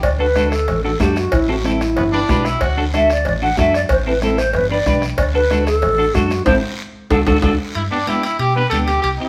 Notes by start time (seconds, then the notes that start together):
0.03 D2 D5, bombo low, bombo rim, cowbell, high conga, long guiro
0.19 D4 F#4 A4 B4
0.36 D4 F#4 A4, bombo rim, high conga, short guiro
0.51 A4, bombo rim, short guiro
0.68 A1, bombo rim, cowbell, high conga, low conga, long guiro
0.84 D4 F#4 A4
1.00 F#2 D4 F#4 G4 A4, bombo low, bombo rim, high conga, low timbale, short guiro
1.16 F#4, bombo rim, short guiro
1.32 A1 E4, bombo low, bombo rim, cowbell, high conga, low conga, long guiro
1.49 C4 E4 F#4 A4
1.64 C4 E4 A4, bombo rim, high conga, short guiro
1.81 bombo rim, short guiro
1.96 G1 B3, bombo rim, cowbell, high conga, low conga, long guiro
2.12 D4 G4 B4
2.29 B1 D4 G4 B4, bombo low, bombo rim, high conga, low timbale, short guiro
2.45 E4, bombo rim, short guiro
2.61 D2 F#4, bombo low, bombo rim, cowbell, high conga, long guiro
2.77 D4 F#4 A4
2.93 D4 F#4 A4 E5, bombo rim, high conga, short guiro
3.10 D5, bombo rim, short guiro
3.25 A1 D5, bombo rim, cowbell, high conga, low conga, long guiro
3.42 D4 F#4 A4 F#5
3.57 F#2 D4 F#4 A4 E5, bombo low, bombo rim, high conga, low timbale, short guiro
3.74 D5, bombo rim, short guiro
3.89 A1 C5, bombo low, bombo rim, cowbell, high conga, low conga, long guiro
4.06 C4 E4 A4 B4
4.22 C4 E4 A4, bombo rim, high conga, short guiro
4.38 C5, bombo rim, short guiro
4.53 G1 B4, bombo rim, cowbell, high conga, low conga, long guiro
4.71 D4 G4 B4 D5
4.86 B1 D4 G4 B4, bombo low, bombo rim, high conga, low conga, short guiro
5.02 bombo rim, short guiro
5.18 D2 D5, bombo low, bombo rim, cowbell, high conga, long guiro
5.34 D4 F#4 A4 B4
5.50 D4 F#4 A4, bombo rim, high conga, short guiro
5.67 A4, bombo rim, short guiro
5.82 A1, bombo rim, cowbell, high conga, low conga, long guiro
5.98 D4 F#4 A4
6.14 F#2 D4 F#4 A4, bombo low, bombo rim, high conga, short guiro
6.31 bombo rim, short guiro
6.46 A1 C4 E4 A4 C5, bombo low, high conga, high timbale, long guiro
7.10 D2 D4 F#4 A4, bombo low, high conga, high timbale, long guiro
7.27 D2 D4 F#4 A4, bombo low, high conga, high timbale, long guiro
7.42 D2 D4 F#4 A4, bombo low, high conga, high timbale, long guiro
7.75 G2 E4, high timbale, long guiro
7.91 B3 D4 G4
8.07 B3 D4 E4 G4, high conga, high timbale, short guiro
8.23 E4, high timbale, short guiro
8.39 B2 G4, high timbale, long guiro
8.55 B3 D4 G4 B4
8.70 D2 B3 D4 G4 A4, high conga, high timbale, short guiro
8.87 G4, high timbale, short guiro
9.02 C2 G4, high timbale, long guiro
9.18 C4 E4 G4